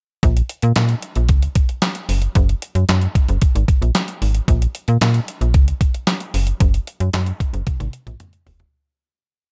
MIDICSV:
0, 0, Header, 1, 3, 480
1, 0, Start_track
1, 0, Key_signature, -5, "minor"
1, 0, Tempo, 530973
1, 209, Time_signature, 4, 2, 24, 8
1, 8605, End_track
2, 0, Start_track
2, 0, Title_t, "FM bass"
2, 0, Program_c, 0, 39
2, 208, Note_on_c, 0, 34, 112
2, 379, Note_off_c, 0, 34, 0
2, 570, Note_on_c, 0, 46, 102
2, 655, Note_off_c, 0, 46, 0
2, 689, Note_on_c, 0, 46, 87
2, 860, Note_off_c, 0, 46, 0
2, 1050, Note_on_c, 0, 34, 92
2, 1168, Note_on_c, 0, 37, 84
2, 1181, Note_off_c, 0, 34, 0
2, 1339, Note_off_c, 0, 37, 0
2, 1888, Note_on_c, 0, 30, 81
2, 2059, Note_off_c, 0, 30, 0
2, 2129, Note_on_c, 0, 30, 119
2, 2300, Note_off_c, 0, 30, 0
2, 2487, Note_on_c, 0, 42, 89
2, 2573, Note_off_c, 0, 42, 0
2, 2611, Note_on_c, 0, 42, 96
2, 2781, Note_off_c, 0, 42, 0
2, 2972, Note_on_c, 0, 30, 95
2, 3056, Note_off_c, 0, 30, 0
2, 3213, Note_on_c, 0, 32, 88
2, 3297, Note_off_c, 0, 32, 0
2, 3451, Note_on_c, 0, 34, 90
2, 3536, Note_off_c, 0, 34, 0
2, 3813, Note_on_c, 0, 32, 82
2, 3982, Note_off_c, 0, 32, 0
2, 4050, Note_on_c, 0, 34, 110
2, 4220, Note_off_c, 0, 34, 0
2, 4414, Note_on_c, 0, 46, 103
2, 4497, Note_off_c, 0, 46, 0
2, 4533, Note_on_c, 0, 46, 104
2, 4702, Note_off_c, 0, 46, 0
2, 4891, Note_on_c, 0, 34, 96
2, 5012, Note_on_c, 0, 37, 96
2, 5026, Note_off_c, 0, 34, 0
2, 5181, Note_off_c, 0, 37, 0
2, 5733, Note_on_c, 0, 30, 78
2, 5902, Note_off_c, 0, 30, 0
2, 5972, Note_on_c, 0, 30, 100
2, 6141, Note_off_c, 0, 30, 0
2, 6331, Note_on_c, 0, 42, 95
2, 6416, Note_off_c, 0, 42, 0
2, 6452, Note_on_c, 0, 42, 94
2, 6622, Note_off_c, 0, 42, 0
2, 6810, Note_on_c, 0, 30, 92
2, 6895, Note_off_c, 0, 30, 0
2, 7052, Note_on_c, 0, 32, 85
2, 7136, Note_off_c, 0, 32, 0
2, 7293, Note_on_c, 0, 34, 85
2, 7377, Note_off_c, 0, 34, 0
2, 7652, Note_on_c, 0, 28, 77
2, 7821, Note_off_c, 0, 28, 0
2, 8605, End_track
3, 0, Start_track
3, 0, Title_t, "Drums"
3, 208, Note_on_c, 9, 36, 97
3, 208, Note_on_c, 9, 42, 83
3, 298, Note_off_c, 9, 36, 0
3, 298, Note_off_c, 9, 42, 0
3, 331, Note_on_c, 9, 42, 53
3, 421, Note_off_c, 9, 42, 0
3, 447, Note_on_c, 9, 42, 74
3, 537, Note_off_c, 9, 42, 0
3, 564, Note_on_c, 9, 42, 47
3, 655, Note_off_c, 9, 42, 0
3, 684, Note_on_c, 9, 42, 90
3, 687, Note_on_c, 9, 38, 117
3, 695, Note_on_c, 9, 39, 101
3, 774, Note_off_c, 9, 42, 0
3, 777, Note_off_c, 9, 38, 0
3, 785, Note_off_c, 9, 39, 0
3, 801, Note_on_c, 9, 42, 52
3, 891, Note_off_c, 9, 42, 0
3, 926, Note_on_c, 9, 42, 71
3, 1017, Note_off_c, 9, 42, 0
3, 1044, Note_on_c, 9, 42, 41
3, 1135, Note_off_c, 9, 42, 0
3, 1163, Note_on_c, 9, 42, 93
3, 1167, Note_on_c, 9, 36, 93
3, 1253, Note_off_c, 9, 42, 0
3, 1257, Note_off_c, 9, 36, 0
3, 1288, Note_on_c, 9, 42, 55
3, 1378, Note_off_c, 9, 42, 0
3, 1405, Note_on_c, 9, 42, 80
3, 1407, Note_on_c, 9, 36, 79
3, 1495, Note_off_c, 9, 42, 0
3, 1497, Note_off_c, 9, 36, 0
3, 1528, Note_on_c, 9, 42, 41
3, 1618, Note_off_c, 9, 42, 0
3, 1644, Note_on_c, 9, 42, 97
3, 1645, Note_on_c, 9, 38, 120
3, 1653, Note_on_c, 9, 39, 100
3, 1734, Note_off_c, 9, 42, 0
3, 1736, Note_off_c, 9, 38, 0
3, 1743, Note_off_c, 9, 39, 0
3, 1763, Note_on_c, 9, 42, 50
3, 1853, Note_off_c, 9, 42, 0
3, 1889, Note_on_c, 9, 46, 75
3, 1980, Note_off_c, 9, 46, 0
3, 2003, Note_on_c, 9, 42, 50
3, 2094, Note_off_c, 9, 42, 0
3, 2127, Note_on_c, 9, 42, 85
3, 2128, Note_on_c, 9, 36, 94
3, 2218, Note_off_c, 9, 42, 0
3, 2219, Note_off_c, 9, 36, 0
3, 2253, Note_on_c, 9, 42, 52
3, 2343, Note_off_c, 9, 42, 0
3, 2370, Note_on_c, 9, 42, 84
3, 2461, Note_off_c, 9, 42, 0
3, 2488, Note_on_c, 9, 42, 47
3, 2579, Note_off_c, 9, 42, 0
3, 2609, Note_on_c, 9, 42, 101
3, 2612, Note_on_c, 9, 38, 114
3, 2620, Note_on_c, 9, 39, 103
3, 2700, Note_off_c, 9, 42, 0
3, 2703, Note_off_c, 9, 38, 0
3, 2711, Note_off_c, 9, 39, 0
3, 2726, Note_on_c, 9, 42, 49
3, 2816, Note_off_c, 9, 42, 0
3, 2850, Note_on_c, 9, 36, 96
3, 2852, Note_on_c, 9, 42, 70
3, 2940, Note_off_c, 9, 36, 0
3, 2943, Note_off_c, 9, 42, 0
3, 2970, Note_on_c, 9, 42, 48
3, 3060, Note_off_c, 9, 42, 0
3, 3087, Note_on_c, 9, 42, 84
3, 3090, Note_on_c, 9, 36, 100
3, 3178, Note_off_c, 9, 42, 0
3, 3181, Note_off_c, 9, 36, 0
3, 3214, Note_on_c, 9, 42, 60
3, 3304, Note_off_c, 9, 42, 0
3, 3329, Note_on_c, 9, 36, 88
3, 3331, Note_on_c, 9, 42, 72
3, 3420, Note_off_c, 9, 36, 0
3, 3422, Note_off_c, 9, 42, 0
3, 3455, Note_on_c, 9, 42, 46
3, 3545, Note_off_c, 9, 42, 0
3, 3569, Note_on_c, 9, 42, 105
3, 3570, Note_on_c, 9, 38, 114
3, 3578, Note_on_c, 9, 39, 91
3, 3659, Note_off_c, 9, 42, 0
3, 3661, Note_off_c, 9, 38, 0
3, 3668, Note_off_c, 9, 39, 0
3, 3688, Note_on_c, 9, 42, 49
3, 3779, Note_off_c, 9, 42, 0
3, 3813, Note_on_c, 9, 46, 69
3, 3904, Note_off_c, 9, 46, 0
3, 3928, Note_on_c, 9, 42, 46
3, 4019, Note_off_c, 9, 42, 0
3, 4051, Note_on_c, 9, 36, 102
3, 4052, Note_on_c, 9, 42, 91
3, 4141, Note_off_c, 9, 36, 0
3, 4142, Note_off_c, 9, 42, 0
3, 4177, Note_on_c, 9, 42, 58
3, 4267, Note_off_c, 9, 42, 0
3, 4292, Note_on_c, 9, 42, 76
3, 4382, Note_off_c, 9, 42, 0
3, 4409, Note_on_c, 9, 42, 44
3, 4500, Note_off_c, 9, 42, 0
3, 4531, Note_on_c, 9, 42, 91
3, 4534, Note_on_c, 9, 38, 118
3, 4542, Note_on_c, 9, 39, 101
3, 4622, Note_off_c, 9, 42, 0
3, 4625, Note_off_c, 9, 38, 0
3, 4632, Note_off_c, 9, 39, 0
3, 4648, Note_on_c, 9, 42, 52
3, 4739, Note_off_c, 9, 42, 0
3, 4775, Note_on_c, 9, 42, 73
3, 4865, Note_off_c, 9, 42, 0
3, 4894, Note_on_c, 9, 42, 40
3, 4984, Note_off_c, 9, 42, 0
3, 5009, Note_on_c, 9, 42, 83
3, 5011, Note_on_c, 9, 36, 108
3, 5099, Note_off_c, 9, 42, 0
3, 5102, Note_off_c, 9, 36, 0
3, 5134, Note_on_c, 9, 42, 58
3, 5224, Note_off_c, 9, 42, 0
3, 5250, Note_on_c, 9, 36, 81
3, 5250, Note_on_c, 9, 42, 72
3, 5340, Note_off_c, 9, 36, 0
3, 5341, Note_off_c, 9, 42, 0
3, 5373, Note_on_c, 9, 42, 49
3, 5464, Note_off_c, 9, 42, 0
3, 5487, Note_on_c, 9, 42, 103
3, 5488, Note_on_c, 9, 38, 120
3, 5496, Note_on_c, 9, 39, 83
3, 5578, Note_off_c, 9, 42, 0
3, 5579, Note_off_c, 9, 38, 0
3, 5586, Note_off_c, 9, 39, 0
3, 5608, Note_on_c, 9, 42, 49
3, 5699, Note_off_c, 9, 42, 0
3, 5732, Note_on_c, 9, 46, 68
3, 5823, Note_off_c, 9, 46, 0
3, 5847, Note_on_c, 9, 42, 51
3, 5937, Note_off_c, 9, 42, 0
3, 5970, Note_on_c, 9, 42, 82
3, 5971, Note_on_c, 9, 36, 95
3, 6061, Note_off_c, 9, 36, 0
3, 6061, Note_off_c, 9, 42, 0
3, 6094, Note_on_c, 9, 42, 54
3, 6184, Note_off_c, 9, 42, 0
3, 6213, Note_on_c, 9, 42, 76
3, 6304, Note_off_c, 9, 42, 0
3, 6332, Note_on_c, 9, 42, 49
3, 6422, Note_off_c, 9, 42, 0
3, 6449, Note_on_c, 9, 42, 91
3, 6452, Note_on_c, 9, 38, 125
3, 6460, Note_on_c, 9, 39, 104
3, 6540, Note_off_c, 9, 42, 0
3, 6543, Note_off_c, 9, 38, 0
3, 6550, Note_off_c, 9, 39, 0
3, 6567, Note_on_c, 9, 42, 50
3, 6658, Note_off_c, 9, 42, 0
3, 6692, Note_on_c, 9, 36, 98
3, 6696, Note_on_c, 9, 42, 72
3, 6782, Note_off_c, 9, 36, 0
3, 6786, Note_off_c, 9, 42, 0
3, 6813, Note_on_c, 9, 42, 43
3, 6903, Note_off_c, 9, 42, 0
3, 6931, Note_on_c, 9, 42, 85
3, 6932, Note_on_c, 9, 36, 98
3, 6932, Note_on_c, 9, 48, 53
3, 7021, Note_off_c, 9, 42, 0
3, 7022, Note_off_c, 9, 36, 0
3, 7023, Note_off_c, 9, 48, 0
3, 7053, Note_on_c, 9, 48, 59
3, 7055, Note_on_c, 9, 42, 55
3, 7144, Note_off_c, 9, 48, 0
3, 7145, Note_off_c, 9, 42, 0
3, 7171, Note_on_c, 9, 42, 70
3, 7261, Note_off_c, 9, 42, 0
3, 7293, Note_on_c, 9, 47, 56
3, 7295, Note_on_c, 9, 42, 47
3, 7384, Note_off_c, 9, 47, 0
3, 7386, Note_off_c, 9, 42, 0
3, 7412, Note_on_c, 9, 42, 101
3, 7414, Note_on_c, 9, 45, 81
3, 7503, Note_off_c, 9, 42, 0
3, 7504, Note_off_c, 9, 45, 0
3, 7530, Note_on_c, 9, 42, 47
3, 7620, Note_off_c, 9, 42, 0
3, 7653, Note_on_c, 9, 43, 92
3, 7655, Note_on_c, 9, 46, 73
3, 7744, Note_off_c, 9, 43, 0
3, 7745, Note_off_c, 9, 46, 0
3, 7770, Note_on_c, 9, 42, 52
3, 7774, Note_on_c, 9, 43, 84
3, 7860, Note_off_c, 9, 42, 0
3, 7864, Note_off_c, 9, 43, 0
3, 8605, End_track
0, 0, End_of_file